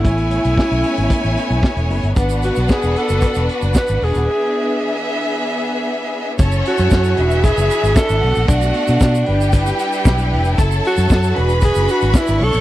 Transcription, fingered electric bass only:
X:1
M:4/4
L:1/16
Q:1/4=114
K:Emix
V:1 name="Fingered electric bass" clef=bass
A,,,3 B,,, z B,,, z G,,, z A,,, z B,,, z E,,, F,,, =G,,, | G,,,3 B,,, z E,,, z F,,, z E,,, z F,,, z G,,, E,,, ^D,,, | z16 | F,,,2 z F,, F,,2 E,,,3 F,,, z G,,, z G,,, B,,, ^A,,, |
B,,,2 z B,, B,,2 =G,,,4 z2 B,,,2 ^E,,,2 | F,,,2 z F,, F,,2 E,,,3 F,,, z G,,, z G,,, B,,, ^A,,, |]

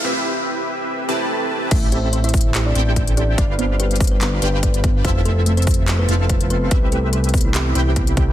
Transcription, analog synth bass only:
X:1
M:4/4
L:1/8
Q:"Swing 16ths" 1/4=144
K:C
V:1 name="Analog synth bass" clef=bass
z8 | A,,,4- A,,, A,,,3 | z4 z G,,,3 | F,,,4- F,,, F,,,3 |
C,,4- C,, C,,3 |]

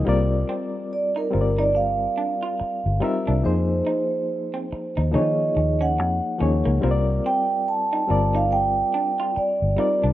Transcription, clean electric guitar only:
X:1
M:4/4
L:1/16
Q:"Swing 16ths" 1/4=71
K:Cm
V:1 name="Clean electric guitar"
B, z C z2 E z E z2 D F z2 E D | z2 E z2 C z E E z2 _D z2 D B, | B, z C z2 E z E z2 D F z2 E D |]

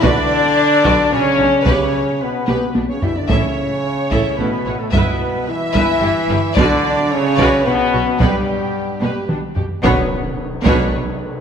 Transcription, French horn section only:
X:1
M:3/4
L:1/16
Q:1/4=110
K:Bm
V:1 name="French horn section"
D8 C4 | C4 B,4 z C E D | C8 B,3 A, | B,4 E8 |
D4 C4 B,4 | G,8 z4 | B,2 z8 z2 |]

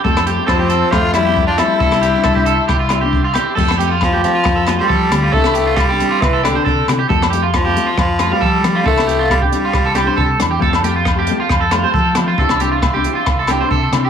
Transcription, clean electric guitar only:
X:1
M:4/4
L:1/16
Q:"Swing 16ths" 1/4=136
K:F
V:1 name="Clean electric guitar"
A2 G2 A G A2 G F2 G2 F A2 | A2 G2 A G A2 G F2 G2 F G2 | A2 G F2 G2 F2 A F c A2 z F | A2 G F2 G2 F2 A G c A2 z G |
A2 G F2 G2 F2 z F f A2 z F | A2 G F2 G2 F2 A G c A2 z G | A2 G F2 G2 F2 A F c A2 z F | A2 G F2 G2 F2 A G c A2 z G |]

